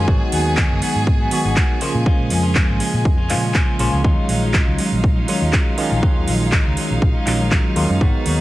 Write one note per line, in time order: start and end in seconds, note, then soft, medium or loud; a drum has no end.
0.00 4.06 G#4 medium
0.00 4.06 G#5 medium
0.07 0.18 G#1 loud
0.07 0.31 D#3 medium
0.07 1.29 D#3 medium
0.07 0.32 B3 medium
0.07 0.32 D#4 loud
0.07 0.33 F#4 loud
0.07 kick loud
0.32 0.65 D#2 medium
0.32 0.45 D#3 medium
0.32 0.46 B3 medium
0.32 0.45 D#4 medium
0.32 0.44 F#4 medium
0.32 open hi-hat loud
0.45 0.56 B3 soft
0.45 0.57 D#4 medium
0.45 0.57 F#4 medium
0.57 0.80 D#3 medium
0.57 0.82 F#4 loud
0.57 kick loud
0.57 clap loud
0.71 0.79 F#1 loud
0.81 1.20 D#3 medium
0.81 1.20 B3 medium
0.81 1.20 D#4 medium
0.81 1.18 F#4 medium
0.81 open hi-hat loud
0.95 1.27 G#2 medium
1.07 kick loud
1.20 1.31 B3 medium
1.20 1.32 D#4 medium
1.20 1.31 F#4 medium
1.31 1.45 D#3 medium
1.31 1.78 D#3 medium
1.31 1.78 F#3 medium
1.31 1.79 G#3 medium
1.31 1.79 B3 medium
1.31 1.45 B3 medium
1.31 1.45 D#4 medium
1.31 1.79 F#4 medium
1.31 1.43 F#4 medium
1.31 open hi-hat loud
1.45 1.54 G#1 medium
1.45 1.56 B3 soft
1.45 1.56 D#4 medium
1.45 1.56 F#4 medium
1.56 1.80 D#3 medium
1.56 1.81 B3 loud
1.56 1.82 D#4 medium
1.56 1.82 F#4 loud
1.56 kick loud
1.56 clap loud
1.81 2.03 C#3 loud
1.81 2.05 F3 medium
1.81 2.03 F3 medium
1.81 2.03 G#3 medium
1.81 2.05 G#3 medium
1.81 2.04 A#3 medium
1.81 2.06 C#4 medium
1.81 2.04 F4 loud
1.81 2.06 F4 medium
1.81 open hi-hat loud
1.94 2.03 A#2 medium
2.06 3.27 C#3 medium
2.06 2.29 F3 medium
2.06 3.27 F3 medium
2.06 2.30 G#3 medium
2.06 3.28 G#3 medium
2.06 3.28 A#3 medium
2.06 2.31 C#4 loud
2.06 2.31 F4 loud
2.06 3.28 F4 medium
2.06 muted fingered electric bass stroke soft
2.06 kick loud
2.19 2.28 A#1 medium
2.30 2.64 F2 medium
2.30 2.44 F3 medium
2.30 2.44 G#3 medium
2.30 2.43 C#4 medium
2.30 2.42 F4 medium
2.30 open hi-hat loud
2.43 2.54 G#3 medium
2.43 2.55 C#4 medium
2.43 2.55 F4 medium
2.55 2.78 F3 medium
2.55 2.79 G#3 medium
2.55 2.80 C#4 loud
2.55 2.81 F4 medium
2.55 kick loud
2.55 clap loud
2.69 2.77 G#1 medium
2.80 3.18 F3 medium
2.80 3.19 G#3 medium
2.80 3.18 C#4 medium
2.80 3.16 F4 medium
2.80 open hi-hat loud
2.94 3.02 A#2 medium
3.05 3.31 F2 medium
3.05 kick loud
3.18 3.29 G#3 medium
3.18 3.29 C#4 medium
3.18 3.30 F4 medium
3.29 3.63 A#2 medium
3.29 3.77 C#3 medium
3.29 3.43 F3 medium
3.29 3.77 F3 medium
3.29 3.43 G#3 medium
3.29 3.77 G#3 medium
3.29 3.77 A#3 medium
3.29 3.43 C#4 medium
3.29 3.77 F4 medium
3.29 3.41 F4 medium
3.29 clap medium
3.29 open hi-hat loud
3.42 3.53 G#3 soft
3.42 3.54 C#4 medium
3.42 3.54 F4 medium
3.54 3.77 F3 medium
3.54 3.78 G#3 medium
3.54 3.79 C#4 medium
3.54 kick loud
3.54 clap loud
3.79 3.90 A#1 medium
3.79 4.01 C#3 loud
3.79 3.92 F3 medium
3.79 4.01 F3 medium
3.79 3.93 G#3 medium
3.79 4.02 G#3 medium
3.79 4.02 A#3 medium
3.79 3.92 C#4 medium
3.79 4.02 F4 loud
3.79 3.91 F4 medium
3.79 open hi-hat loud
3.92 4.02 C#2 medium
3.92 4.03 G#3 soft
3.92 4.04 C#4 soft
3.92 4.04 F4 medium
4.03 5.25 D#3 medium
4.03 5.25 F#3 medium
4.03 4.27 F#3 medium
4.03 5.25 G#3 medium
4.03 4.28 G#3 loud
4.03 5.26 C#4 medium
4.03 4.29 C#4 loud
4.03 8.41 D#4 medium
4.03 5.26 F4 medium
4.03 4.30 F4 loud
4.03 8.41 F5 medium
4.03 kick loud
4.29 4.62 A#1 medium
4.29 4.42 F#3 medium
4.29 4.43 G#3 medium
4.29 4.42 C#4 medium
4.29 4.41 F4 medium
4.29 open hi-hat loud
4.42 4.53 G#3 soft
4.42 4.53 C#4 medium
4.42 4.54 F4 medium
4.53 4.77 F#3 medium
4.53 4.78 G#3 medium
4.53 4.79 C#4 medium
4.53 4.79 F4 medium
4.53 kick loud
4.53 clap loud
4.67 4.76 C#2 medium
4.78 5.17 F#3 medium
4.78 5.17 G#3 medium
4.78 5.16 C#4 medium
4.78 5.15 F4 medium
4.78 open hi-hat loud
4.92 5.24 A#1 medium
5.04 kick loud
5.16 5.27 G#3 medium
5.16 5.28 C#4 medium
5.16 5.28 F4 medium
5.27 5.75 D#3 medium
5.27 5.41 F#3 medium
5.27 5.75 F#3 medium
5.27 5.75 G#3 medium
5.27 5.42 G#3 medium
5.27 5.75 C#4 medium
5.27 5.41 C#4 medium
5.27 5.75 F4 medium
5.27 5.40 F4 medium
5.27 open hi-hat loud
5.41 5.50 D#2 medium
5.41 5.52 G#3 medium
5.41 5.53 C#4 medium
5.41 5.53 F4 medium
5.53 5.76 F#3 medium
5.53 5.77 G#3 medium
5.53 5.78 C#4 medium
5.53 5.79 F4 loud
5.53 kick loud
5.53 clap loud
5.77 6.00 D#3 loud
5.77 5.91 F#3 medium
5.77 6.00 F#3 medium
5.77 6.00 G#3 medium
5.77 5.92 G#3 medium
5.77 6.00 C#4 medium
5.77 5.91 C#4 medium
5.77 6.00 F4 loud
5.77 5.90 F4 medium
5.77 open hi-hat medium
5.91 6.00 A#1 medium
5.91 6.02 G#3 soft
5.91 6.02 C#4 soft
5.91 6.03 F4 medium
6.02 6.26 F#3 loud
6.02 6.27 G#3 medium
6.02 6.27 C#4 medium
6.02 7.24 F4 medium
6.02 6.28 F4 loud
6.02 kick loud
6.16 6.25 D#2 medium
6.27 6.60 A#1 medium
6.27 6.41 F#3 medium
6.27 6.41 G#3 medium
6.27 6.40 C#4 medium
6.27 6.39 F4 medium
6.27 open hi-hat medium
6.40 6.52 G#3 medium
6.40 6.52 C#4 medium
6.40 6.52 F4 medium
6.52 6.75 F#3 medium
6.52 6.76 G#3 medium
6.52 6.77 C#4 medium
6.52 6.78 F4 medium
6.52 kick loud
6.52 clap loud
6.66 6.74 C#2 medium
6.76 7.15 F#3 medium
6.76 7.15 G#3 medium
6.76 7.15 C#4 medium
6.76 7.14 F4 medium
6.76 open hi-hat medium
6.91 6.99 A#1 medium
7.02 7.12 A#1 loud
7.02 kick loud
7.15 7.26 G#3 medium
7.15 7.26 C#4 medium
7.15 7.26 F4 medium
7.26 7.59 A#1 medium
7.26 7.73 D#3 medium
7.26 7.40 F#3 medium
7.26 7.73 F#3 medium
7.26 7.73 G#3 medium
7.26 7.40 G#3 medium
7.26 7.73 C#4 medium
7.26 7.40 C#4 medium
7.26 7.74 F4 medium
7.26 7.39 F4 medium
7.26 clap medium
7.26 open hi-hat loud
7.40 7.51 G#3 medium
7.40 7.51 C#4 medium
7.40 7.51 F4 medium
7.51 7.75 F#3 medium
7.51 7.76 G#3 medium
7.51 7.76 C#4 medium
7.51 7.77 F4 medium
7.51 kick loud
7.51 clap loud
7.76 7.86 D#2 medium
7.76 7.98 D#3 loud
7.76 7.98 F#3 medium
7.76 7.90 F#3 medium
7.76 7.98 G#3 medium
7.76 7.90 G#3 medium
7.76 7.98 C#4 medium
7.76 7.89 C#4 medium
7.76 7.98 F4 loud
7.76 7.88 F4 medium
7.76 open hi-hat medium
7.89 7.98 F#2 medium
7.89 8.01 G#3 soft
7.89 8.01 C#4 medium
7.89 8.01 F4 medium
8.00 8.11 G#1 loud
8.00 8.24 D#3 medium
8.00 8.41 D#3 medium
8.00 8.41 F#3 medium
8.00 8.41 G#3 medium
8.00 8.25 B3 medium
8.00 8.41 B3 medium
8.00 8.26 D#4 medium
8.00 8.41 F#4 medium
8.00 8.26 F#4 loud
8.00 kick loud
8.25 8.41 D#2 medium
8.25 8.39 D#3 medium
8.25 8.39 B3 medium
8.25 8.39 D#4 medium
8.25 8.37 F#4 medium
8.25 open hi-hat loud